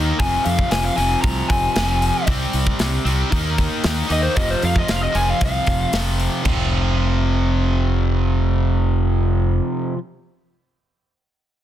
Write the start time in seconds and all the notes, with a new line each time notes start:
Already playing: D#2 D#3 A#3 D#4
0.19 F1 F2 C3 F3 G#5, kick, open hi-hat
0.44 F2 F5, open hi-hat
0.59 kick
0.71 F1 G#5, snare, open hi-hat
0.84 F5
0.96 F1 C3 F3 G#5, open hi-hat
1.01 F2
1.22 C2 A#5, kick, open hi-hat
1.50 F1 G#5, kick, open hi-hat
1.75 F1 F2 C3 F3, snare, open hi-hat
2.02 open hi-hat
2.26 C2 C3 G3 C4, kick, open hi-hat
2.53 C2, open hi-hat
2.67 kick
2.79 C2, snare, open hi-hat
3.05 C2 C3 G3 C4, open hi-hat
3.30 D#2 D#3 A#3 D#4, kick, open hi-hat
3.58 kick, open hi-hat
3.84 D#2, snare, open hi-hat
4.07 D#2 D#3 A#3 D#4, open hi-hat
4.12 D#5
4.23 C5
4.34 F1 F2 C3 F3 D#5, kick, open hi-hat
4.50 C5
4.62 F2 F5, open hi-hat
4.76 D#5, kick
4.88 F1 F5, snare, open hi-hat
5.03 D#5
5.12 F1 F2 C3 F3 G#5, open hi-hat
5.30 F5
5.41 C2 F5, kick, open hi-hat
5.67 F1, kick, open hi-hat
5.92 F1 F2 C3 F3, snare, open hi-hat
6.20 open hi-hat
6.43 F1 F2 C3, kick, floor tom, crash
6.48 F3